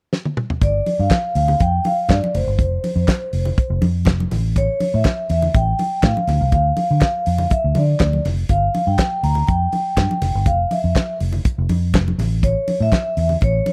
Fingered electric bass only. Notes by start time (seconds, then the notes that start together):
0.62 G1
0.99 G2
1.35 D2
1.61 F2
2.10 G2
2.35 F1
2.47 G1
2.59 F1
2.96 F2
3.33 F1
3.70 F1
3.82 F2
4.07 F1
4.32 A1
4.94 A2
5.30 E2
5.55 A1
6.03 A2
6.28 D2
6.41 C2
6.53 D2
6.91 D3
7.27 F2
7.64 D2
7.76 D3
8.00 D2
8.25 F1
8.50 G1
8.87 G2
9.23 D2
9.49 F2
9.97 G2
10.22 F1
10.35 G1
10.46 F1
10.84 F2
11.21 F1
11.58 F1
11.70 F2
11.94 F1
12.18 A1
12.80 A2
13.17 E2
13.42 A1